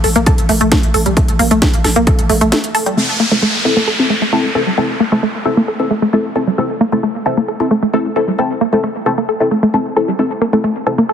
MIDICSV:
0, 0, Header, 1, 6, 480
1, 0, Start_track
1, 0, Tempo, 451128
1, 1243, Time_signature, 4, 2, 24, 8
1, 11844, End_track
2, 0, Start_track
2, 0, Title_t, "Synth stab"
2, 0, Program_c, 0, 62
2, 3163, Note_on_c, 0, 60, 89
2, 3163, Note_on_c, 0, 64, 82
2, 3163, Note_on_c, 0, 69, 98
2, 3273, Note_off_c, 0, 64, 0
2, 3273, Note_off_c, 0, 69, 0
2, 3274, Note_off_c, 0, 60, 0
2, 3527, Note_on_c, 0, 69, 82
2, 3528, Note_on_c, 0, 60, 72
2, 3528, Note_on_c, 0, 64, 67
2, 3630, Note_off_c, 0, 60, 0
2, 3630, Note_off_c, 0, 64, 0
2, 3630, Note_off_c, 0, 69, 0
2, 3883, Note_on_c, 0, 60, 91
2, 3883, Note_on_c, 0, 64, 86
2, 3883, Note_on_c, 0, 69, 102
2, 4057, Note_off_c, 0, 60, 0
2, 4057, Note_off_c, 0, 64, 0
2, 4057, Note_off_c, 0, 69, 0
2, 4248, Note_on_c, 0, 60, 74
2, 4248, Note_on_c, 0, 64, 67
2, 4248, Note_on_c, 0, 69, 81
2, 4416, Note_off_c, 0, 60, 0
2, 4416, Note_off_c, 0, 64, 0
2, 4416, Note_off_c, 0, 69, 0
2, 4603, Note_on_c, 0, 60, 86
2, 4603, Note_on_c, 0, 69, 98
2, 4604, Note_on_c, 0, 64, 82
2, 4777, Note_off_c, 0, 60, 0
2, 4777, Note_off_c, 0, 64, 0
2, 4777, Note_off_c, 0, 69, 0
2, 4843, Note_on_c, 0, 60, 84
2, 4843, Note_on_c, 0, 64, 76
2, 4843, Note_on_c, 0, 69, 93
2, 4954, Note_off_c, 0, 60, 0
2, 4954, Note_off_c, 0, 64, 0
2, 4954, Note_off_c, 0, 69, 0
2, 5083, Note_on_c, 0, 60, 90
2, 5083, Note_on_c, 0, 64, 83
2, 5083, Note_on_c, 0, 69, 101
2, 5194, Note_off_c, 0, 60, 0
2, 5194, Note_off_c, 0, 64, 0
2, 5194, Note_off_c, 0, 69, 0
2, 5447, Note_on_c, 0, 64, 67
2, 5447, Note_on_c, 0, 69, 81
2, 5448, Note_on_c, 0, 60, 72
2, 5550, Note_off_c, 0, 60, 0
2, 5550, Note_off_c, 0, 64, 0
2, 5550, Note_off_c, 0, 69, 0
2, 5804, Note_on_c, 0, 60, 94
2, 5804, Note_on_c, 0, 64, 87
2, 5804, Note_on_c, 0, 69, 102
2, 5977, Note_off_c, 0, 60, 0
2, 5977, Note_off_c, 0, 64, 0
2, 5977, Note_off_c, 0, 69, 0
2, 6167, Note_on_c, 0, 60, 73
2, 6167, Note_on_c, 0, 64, 67
2, 6167, Note_on_c, 0, 69, 83
2, 6336, Note_off_c, 0, 60, 0
2, 6336, Note_off_c, 0, 64, 0
2, 6336, Note_off_c, 0, 69, 0
2, 6523, Note_on_c, 0, 60, 91
2, 6523, Note_on_c, 0, 64, 82
2, 6523, Note_on_c, 0, 69, 97
2, 6696, Note_off_c, 0, 64, 0
2, 6696, Note_off_c, 0, 69, 0
2, 6697, Note_off_c, 0, 60, 0
2, 6763, Note_on_c, 0, 69, 91
2, 6764, Note_on_c, 0, 60, 84
2, 6764, Note_on_c, 0, 64, 77
2, 6874, Note_off_c, 0, 60, 0
2, 6874, Note_off_c, 0, 64, 0
2, 6874, Note_off_c, 0, 69, 0
2, 7003, Note_on_c, 0, 60, 92
2, 7003, Note_on_c, 0, 64, 82
2, 7003, Note_on_c, 0, 69, 99
2, 7114, Note_off_c, 0, 60, 0
2, 7114, Note_off_c, 0, 64, 0
2, 7114, Note_off_c, 0, 69, 0
2, 7367, Note_on_c, 0, 60, 73
2, 7367, Note_on_c, 0, 64, 68
2, 7367, Note_on_c, 0, 69, 80
2, 7470, Note_off_c, 0, 60, 0
2, 7470, Note_off_c, 0, 64, 0
2, 7470, Note_off_c, 0, 69, 0
2, 7722, Note_on_c, 0, 69, 107
2, 7723, Note_on_c, 0, 60, 93
2, 7723, Note_on_c, 0, 64, 84
2, 7896, Note_off_c, 0, 60, 0
2, 7896, Note_off_c, 0, 64, 0
2, 7896, Note_off_c, 0, 69, 0
2, 8087, Note_on_c, 0, 60, 75
2, 8087, Note_on_c, 0, 64, 67
2, 8087, Note_on_c, 0, 69, 82
2, 8256, Note_off_c, 0, 60, 0
2, 8256, Note_off_c, 0, 64, 0
2, 8256, Note_off_c, 0, 69, 0
2, 8443, Note_on_c, 0, 60, 89
2, 8443, Note_on_c, 0, 64, 81
2, 8443, Note_on_c, 0, 69, 99
2, 8616, Note_off_c, 0, 60, 0
2, 8616, Note_off_c, 0, 64, 0
2, 8617, Note_off_c, 0, 69, 0
2, 8682, Note_on_c, 0, 69, 93
2, 8683, Note_on_c, 0, 60, 84
2, 8683, Note_on_c, 0, 64, 75
2, 8793, Note_off_c, 0, 60, 0
2, 8793, Note_off_c, 0, 69, 0
2, 8794, Note_off_c, 0, 64, 0
2, 8923, Note_on_c, 0, 60, 86
2, 8923, Note_on_c, 0, 64, 83
2, 8923, Note_on_c, 0, 69, 98
2, 9034, Note_off_c, 0, 60, 0
2, 9034, Note_off_c, 0, 64, 0
2, 9034, Note_off_c, 0, 69, 0
2, 9286, Note_on_c, 0, 64, 65
2, 9286, Note_on_c, 0, 69, 83
2, 9287, Note_on_c, 0, 60, 73
2, 9390, Note_off_c, 0, 60, 0
2, 9390, Note_off_c, 0, 64, 0
2, 9390, Note_off_c, 0, 69, 0
2, 9641, Note_on_c, 0, 60, 93
2, 9641, Note_on_c, 0, 64, 83
2, 9642, Note_on_c, 0, 69, 103
2, 9816, Note_off_c, 0, 60, 0
2, 9816, Note_off_c, 0, 64, 0
2, 9816, Note_off_c, 0, 69, 0
2, 10006, Note_on_c, 0, 60, 74
2, 10006, Note_on_c, 0, 64, 68
2, 10006, Note_on_c, 0, 69, 81
2, 10175, Note_off_c, 0, 60, 0
2, 10175, Note_off_c, 0, 64, 0
2, 10175, Note_off_c, 0, 69, 0
2, 10362, Note_on_c, 0, 60, 91
2, 10362, Note_on_c, 0, 64, 82
2, 10362, Note_on_c, 0, 69, 102
2, 10536, Note_off_c, 0, 60, 0
2, 10536, Note_off_c, 0, 64, 0
2, 10536, Note_off_c, 0, 69, 0
2, 10602, Note_on_c, 0, 60, 84
2, 10602, Note_on_c, 0, 64, 78
2, 10602, Note_on_c, 0, 69, 91
2, 10713, Note_off_c, 0, 60, 0
2, 10713, Note_off_c, 0, 64, 0
2, 10713, Note_off_c, 0, 69, 0
2, 10842, Note_on_c, 0, 60, 87
2, 10842, Note_on_c, 0, 64, 83
2, 10842, Note_on_c, 0, 69, 102
2, 10953, Note_off_c, 0, 60, 0
2, 10953, Note_off_c, 0, 64, 0
2, 10953, Note_off_c, 0, 69, 0
2, 11205, Note_on_c, 0, 60, 73
2, 11206, Note_on_c, 0, 64, 68
2, 11206, Note_on_c, 0, 69, 80
2, 11309, Note_off_c, 0, 60, 0
2, 11309, Note_off_c, 0, 64, 0
2, 11309, Note_off_c, 0, 69, 0
2, 11561, Note_on_c, 0, 60, 94
2, 11561, Note_on_c, 0, 69, 102
2, 11562, Note_on_c, 0, 64, 85
2, 11736, Note_off_c, 0, 60, 0
2, 11736, Note_off_c, 0, 64, 0
2, 11736, Note_off_c, 0, 69, 0
2, 11844, End_track
3, 0, Start_track
3, 0, Title_t, "Synth arpeggio sound"
3, 0, Program_c, 1, 84
3, 43, Note_on_c, 1, 69, 79
3, 97, Note_off_c, 1, 69, 0
3, 167, Note_on_c, 1, 58, 102
3, 218, Note_off_c, 1, 58, 0
3, 282, Note_on_c, 1, 69, 85
3, 337, Note_off_c, 1, 69, 0
3, 523, Note_on_c, 1, 57, 101
3, 577, Note_off_c, 1, 57, 0
3, 648, Note_on_c, 1, 57, 102
3, 698, Note_off_c, 1, 57, 0
3, 763, Note_on_c, 1, 57, 101
3, 817, Note_off_c, 1, 57, 0
3, 1003, Note_on_c, 1, 69, 80
3, 1057, Note_off_c, 1, 69, 0
3, 1127, Note_on_c, 1, 55, 78
3, 1203, Note_off_c, 1, 55, 0
3, 1242, Note_on_c, 1, 57, 85
3, 1297, Note_off_c, 1, 57, 0
3, 1482, Note_on_c, 1, 58, 105
3, 1564, Note_off_c, 1, 58, 0
3, 1607, Note_on_c, 1, 57, 106
3, 1658, Note_off_c, 1, 57, 0
3, 1723, Note_on_c, 1, 57, 101
3, 1777, Note_off_c, 1, 57, 0
3, 1962, Note_on_c, 1, 69, 77
3, 2017, Note_off_c, 1, 69, 0
3, 2087, Note_on_c, 1, 58, 106
3, 2137, Note_off_c, 1, 58, 0
3, 2203, Note_on_c, 1, 69, 79
3, 2257, Note_off_c, 1, 69, 0
3, 2442, Note_on_c, 1, 57, 100
3, 2497, Note_off_c, 1, 57, 0
3, 2566, Note_on_c, 1, 57, 101
3, 2617, Note_off_c, 1, 57, 0
3, 2681, Note_on_c, 1, 57, 100
3, 2736, Note_off_c, 1, 57, 0
3, 2922, Note_on_c, 1, 69, 83
3, 2977, Note_off_c, 1, 69, 0
3, 3047, Note_on_c, 1, 55, 79
3, 3123, Note_off_c, 1, 55, 0
3, 3162, Note_on_c, 1, 57, 84
3, 3217, Note_off_c, 1, 57, 0
3, 3403, Note_on_c, 1, 58, 105
3, 3484, Note_off_c, 1, 58, 0
3, 3527, Note_on_c, 1, 57, 101
3, 3578, Note_off_c, 1, 57, 0
3, 3643, Note_on_c, 1, 57, 100
3, 3697, Note_off_c, 1, 57, 0
3, 3883, Note_on_c, 1, 69, 75
3, 3937, Note_off_c, 1, 69, 0
3, 4008, Note_on_c, 1, 58, 101
3, 4058, Note_off_c, 1, 58, 0
3, 4123, Note_on_c, 1, 69, 78
3, 4177, Note_off_c, 1, 69, 0
3, 4362, Note_on_c, 1, 57, 99
3, 4417, Note_off_c, 1, 57, 0
3, 4487, Note_on_c, 1, 57, 97
3, 4538, Note_off_c, 1, 57, 0
3, 4602, Note_on_c, 1, 57, 98
3, 4657, Note_off_c, 1, 57, 0
3, 4842, Note_on_c, 1, 69, 78
3, 4897, Note_off_c, 1, 69, 0
3, 4967, Note_on_c, 1, 55, 75
3, 5043, Note_off_c, 1, 55, 0
3, 5083, Note_on_c, 1, 57, 85
3, 5137, Note_off_c, 1, 57, 0
3, 5323, Note_on_c, 1, 58, 100
3, 5404, Note_off_c, 1, 58, 0
3, 5448, Note_on_c, 1, 57, 103
3, 5498, Note_off_c, 1, 57, 0
3, 5564, Note_on_c, 1, 57, 101
3, 5618, Note_off_c, 1, 57, 0
3, 5804, Note_on_c, 1, 69, 74
3, 5858, Note_off_c, 1, 69, 0
3, 5929, Note_on_c, 1, 58, 99
3, 5979, Note_off_c, 1, 58, 0
3, 6045, Note_on_c, 1, 69, 80
3, 6098, Note_off_c, 1, 69, 0
3, 6285, Note_on_c, 1, 57, 97
3, 6338, Note_off_c, 1, 57, 0
3, 6408, Note_on_c, 1, 57, 103
3, 6458, Note_off_c, 1, 57, 0
3, 6523, Note_on_c, 1, 57, 103
3, 6577, Note_off_c, 1, 57, 0
3, 6763, Note_on_c, 1, 69, 81
3, 6817, Note_off_c, 1, 69, 0
3, 6888, Note_on_c, 1, 55, 74
3, 6963, Note_off_c, 1, 55, 0
3, 7003, Note_on_c, 1, 57, 85
3, 7057, Note_off_c, 1, 57, 0
3, 7243, Note_on_c, 1, 58, 103
3, 7324, Note_off_c, 1, 58, 0
3, 7367, Note_on_c, 1, 57, 102
3, 7418, Note_off_c, 1, 57, 0
3, 7482, Note_on_c, 1, 57, 102
3, 7537, Note_off_c, 1, 57, 0
3, 7723, Note_on_c, 1, 69, 76
3, 7777, Note_off_c, 1, 69, 0
3, 7846, Note_on_c, 1, 58, 97
3, 7897, Note_off_c, 1, 58, 0
3, 7963, Note_on_c, 1, 69, 78
3, 8017, Note_off_c, 1, 69, 0
3, 8202, Note_on_c, 1, 57, 102
3, 8257, Note_off_c, 1, 57, 0
3, 8327, Note_on_c, 1, 57, 99
3, 8378, Note_off_c, 1, 57, 0
3, 8443, Note_on_c, 1, 57, 98
3, 8497, Note_off_c, 1, 57, 0
3, 8682, Note_on_c, 1, 69, 80
3, 8737, Note_off_c, 1, 69, 0
3, 8807, Note_on_c, 1, 55, 72
3, 8883, Note_off_c, 1, 55, 0
3, 8923, Note_on_c, 1, 57, 82
3, 8977, Note_off_c, 1, 57, 0
3, 9162, Note_on_c, 1, 58, 102
3, 9244, Note_off_c, 1, 58, 0
3, 9286, Note_on_c, 1, 57, 101
3, 9337, Note_off_c, 1, 57, 0
3, 9401, Note_on_c, 1, 57, 102
3, 9456, Note_off_c, 1, 57, 0
3, 9642, Note_on_c, 1, 69, 76
3, 9696, Note_off_c, 1, 69, 0
3, 9765, Note_on_c, 1, 58, 99
3, 9817, Note_off_c, 1, 58, 0
3, 9882, Note_on_c, 1, 69, 82
3, 9936, Note_off_c, 1, 69, 0
3, 10122, Note_on_c, 1, 57, 100
3, 10177, Note_off_c, 1, 57, 0
3, 10246, Note_on_c, 1, 57, 98
3, 10297, Note_off_c, 1, 57, 0
3, 10362, Note_on_c, 1, 57, 97
3, 10417, Note_off_c, 1, 57, 0
3, 10603, Note_on_c, 1, 69, 80
3, 10657, Note_off_c, 1, 69, 0
3, 10726, Note_on_c, 1, 55, 74
3, 10803, Note_off_c, 1, 55, 0
3, 10842, Note_on_c, 1, 57, 83
3, 10897, Note_off_c, 1, 57, 0
3, 11082, Note_on_c, 1, 58, 102
3, 11164, Note_off_c, 1, 58, 0
3, 11206, Note_on_c, 1, 57, 100
3, 11257, Note_off_c, 1, 57, 0
3, 11321, Note_on_c, 1, 57, 102
3, 11376, Note_off_c, 1, 57, 0
3, 11562, Note_on_c, 1, 69, 76
3, 11617, Note_off_c, 1, 69, 0
3, 11686, Note_on_c, 1, 58, 102
3, 11737, Note_off_c, 1, 58, 0
3, 11803, Note_on_c, 1, 69, 81
3, 11844, Note_off_c, 1, 69, 0
3, 11844, End_track
4, 0, Start_track
4, 0, Title_t, "808-style bass"
4, 0, Program_c, 2, 38
4, 44, Note_on_c, 2, 33, 100
4, 161, Note_off_c, 2, 33, 0
4, 168, Note_on_c, 2, 33, 83
4, 281, Note_off_c, 2, 33, 0
4, 408, Note_on_c, 2, 33, 78
4, 517, Note_off_c, 2, 33, 0
4, 524, Note_on_c, 2, 33, 102
4, 642, Note_off_c, 2, 33, 0
4, 648, Note_on_c, 2, 33, 83
4, 761, Note_off_c, 2, 33, 0
4, 888, Note_on_c, 2, 33, 79
4, 997, Note_off_c, 2, 33, 0
4, 1004, Note_on_c, 2, 33, 103
4, 1122, Note_off_c, 2, 33, 0
4, 1128, Note_on_c, 2, 33, 83
4, 1241, Note_off_c, 2, 33, 0
4, 1369, Note_on_c, 2, 33, 78
4, 1478, Note_off_c, 2, 33, 0
4, 1484, Note_on_c, 2, 33, 102
4, 1602, Note_off_c, 2, 33, 0
4, 1609, Note_on_c, 2, 33, 85
4, 1721, Note_off_c, 2, 33, 0
4, 1849, Note_on_c, 2, 33, 76
4, 1958, Note_off_c, 2, 33, 0
4, 1965, Note_on_c, 2, 33, 101
4, 2083, Note_off_c, 2, 33, 0
4, 2089, Note_on_c, 2, 33, 85
4, 2201, Note_off_c, 2, 33, 0
4, 2329, Note_on_c, 2, 33, 77
4, 2437, Note_off_c, 2, 33, 0
4, 2444, Note_on_c, 2, 33, 102
4, 2561, Note_off_c, 2, 33, 0
4, 2568, Note_on_c, 2, 33, 82
4, 2681, Note_off_c, 2, 33, 0
4, 11844, End_track
5, 0, Start_track
5, 0, Title_t, "Downlifter"
5, 0, Program_c, 3, 103
5, 3163, Note_on_c, 3, 60, 71
5, 7003, Note_off_c, 3, 60, 0
5, 11844, End_track
6, 0, Start_track
6, 0, Title_t, "Drums"
6, 42, Note_on_c, 9, 46, 101
6, 148, Note_off_c, 9, 46, 0
6, 166, Note_on_c, 9, 42, 51
6, 273, Note_off_c, 9, 42, 0
6, 281, Note_on_c, 9, 42, 91
6, 282, Note_on_c, 9, 36, 112
6, 388, Note_off_c, 9, 36, 0
6, 388, Note_off_c, 9, 42, 0
6, 406, Note_on_c, 9, 42, 51
6, 513, Note_off_c, 9, 42, 0
6, 521, Note_on_c, 9, 46, 102
6, 628, Note_off_c, 9, 46, 0
6, 646, Note_on_c, 9, 42, 55
6, 753, Note_off_c, 9, 42, 0
6, 762, Note_on_c, 9, 36, 113
6, 762, Note_on_c, 9, 38, 123
6, 762, Note_on_c, 9, 42, 92
6, 868, Note_off_c, 9, 38, 0
6, 868, Note_off_c, 9, 42, 0
6, 869, Note_off_c, 9, 36, 0
6, 886, Note_on_c, 9, 42, 52
6, 993, Note_off_c, 9, 42, 0
6, 1002, Note_on_c, 9, 46, 104
6, 1108, Note_off_c, 9, 46, 0
6, 1127, Note_on_c, 9, 42, 52
6, 1233, Note_off_c, 9, 42, 0
6, 1242, Note_on_c, 9, 36, 114
6, 1242, Note_on_c, 9, 42, 95
6, 1349, Note_off_c, 9, 36, 0
6, 1349, Note_off_c, 9, 42, 0
6, 1367, Note_on_c, 9, 42, 54
6, 1473, Note_off_c, 9, 42, 0
6, 1483, Note_on_c, 9, 46, 104
6, 1589, Note_off_c, 9, 46, 0
6, 1607, Note_on_c, 9, 42, 56
6, 1713, Note_off_c, 9, 42, 0
6, 1722, Note_on_c, 9, 36, 110
6, 1723, Note_on_c, 9, 38, 127
6, 1723, Note_on_c, 9, 42, 99
6, 1829, Note_off_c, 9, 36, 0
6, 1829, Note_off_c, 9, 38, 0
6, 1829, Note_off_c, 9, 42, 0
6, 1846, Note_on_c, 9, 42, 52
6, 1953, Note_off_c, 9, 42, 0
6, 1962, Note_on_c, 9, 38, 39
6, 1962, Note_on_c, 9, 46, 105
6, 2069, Note_off_c, 9, 38, 0
6, 2069, Note_off_c, 9, 46, 0
6, 2086, Note_on_c, 9, 42, 55
6, 2193, Note_off_c, 9, 42, 0
6, 2202, Note_on_c, 9, 36, 113
6, 2202, Note_on_c, 9, 42, 95
6, 2308, Note_off_c, 9, 42, 0
6, 2309, Note_off_c, 9, 36, 0
6, 2327, Note_on_c, 9, 42, 53
6, 2433, Note_off_c, 9, 42, 0
6, 2442, Note_on_c, 9, 46, 102
6, 2548, Note_off_c, 9, 46, 0
6, 2567, Note_on_c, 9, 42, 56
6, 2673, Note_off_c, 9, 42, 0
6, 2682, Note_on_c, 9, 38, 127
6, 2682, Note_on_c, 9, 42, 96
6, 2788, Note_off_c, 9, 38, 0
6, 2788, Note_off_c, 9, 42, 0
6, 2807, Note_on_c, 9, 42, 55
6, 2913, Note_off_c, 9, 42, 0
6, 2922, Note_on_c, 9, 46, 106
6, 3028, Note_off_c, 9, 46, 0
6, 3047, Note_on_c, 9, 42, 54
6, 3153, Note_off_c, 9, 42, 0
6, 7003, Note_on_c, 9, 42, 93
6, 7109, Note_off_c, 9, 42, 0
6, 7127, Note_on_c, 9, 42, 51
6, 7234, Note_off_c, 9, 42, 0
6, 7243, Note_on_c, 9, 42, 66
6, 7349, Note_off_c, 9, 42, 0
6, 7366, Note_on_c, 9, 42, 54
6, 7473, Note_off_c, 9, 42, 0
6, 7482, Note_on_c, 9, 42, 97
6, 7589, Note_off_c, 9, 42, 0
6, 7607, Note_on_c, 9, 42, 51
6, 7713, Note_off_c, 9, 42, 0
6, 7847, Note_on_c, 9, 42, 53
6, 7953, Note_off_c, 9, 42, 0
6, 7962, Note_on_c, 9, 42, 91
6, 8069, Note_off_c, 9, 42, 0
6, 8202, Note_on_c, 9, 42, 67
6, 8309, Note_off_c, 9, 42, 0
6, 8327, Note_on_c, 9, 42, 53
6, 8433, Note_off_c, 9, 42, 0
6, 8567, Note_on_c, 9, 42, 53
6, 8673, Note_off_c, 9, 42, 0
6, 8806, Note_on_c, 9, 42, 53
6, 8913, Note_off_c, 9, 42, 0
6, 9046, Note_on_c, 9, 42, 49
6, 9152, Note_off_c, 9, 42, 0
6, 9161, Note_on_c, 9, 42, 64
6, 9268, Note_off_c, 9, 42, 0
6, 9402, Note_on_c, 9, 42, 94
6, 9509, Note_off_c, 9, 42, 0
6, 9527, Note_on_c, 9, 42, 48
6, 9633, Note_off_c, 9, 42, 0
6, 9642, Note_on_c, 9, 42, 63
6, 9748, Note_off_c, 9, 42, 0
6, 9766, Note_on_c, 9, 42, 51
6, 9873, Note_off_c, 9, 42, 0
6, 9881, Note_on_c, 9, 42, 89
6, 9987, Note_off_c, 9, 42, 0
6, 10006, Note_on_c, 9, 42, 50
6, 10112, Note_off_c, 9, 42, 0
6, 10122, Note_on_c, 9, 42, 63
6, 10229, Note_off_c, 9, 42, 0
6, 10246, Note_on_c, 9, 42, 51
6, 10353, Note_off_c, 9, 42, 0
6, 10362, Note_on_c, 9, 42, 90
6, 10468, Note_off_c, 9, 42, 0
6, 10486, Note_on_c, 9, 42, 50
6, 10593, Note_off_c, 9, 42, 0
6, 10602, Note_on_c, 9, 42, 65
6, 10708, Note_off_c, 9, 42, 0
6, 10726, Note_on_c, 9, 42, 49
6, 10832, Note_off_c, 9, 42, 0
6, 10841, Note_on_c, 9, 42, 86
6, 10948, Note_off_c, 9, 42, 0
6, 10966, Note_on_c, 9, 42, 49
6, 11072, Note_off_c, 9, 42, 0
6, 11082, Note_on_c, 9, 42, 60
6, 11188, Note_off_c, 9, 42, 0
6, 11206, Note_on_c, 9, 42, 49
6, 11313, Note_off_c, 9, 42, 0
6, 11321, Note_on_c, 9, 42, 88
6, 11428, Note_off_c, 9, 42, 0
6, 11446, Note_on_c, 9, 42, 48
6, 11552, Note_off_c, 9, 42, 0
6, 11561, Note_on_c, 9, 42, 60
6, 11668, Note_off_c, 9, 42, 0
6, 11686, Note_on_c, 9, 42, 49
6, 11792, Note_off_c, 9, 42, 0
6, 11801, Note_on_c, 9, 42, 86
6, 11844, Note_off_c, 9, 42, 0
6, 11844, End_track
0, 0, End_of_file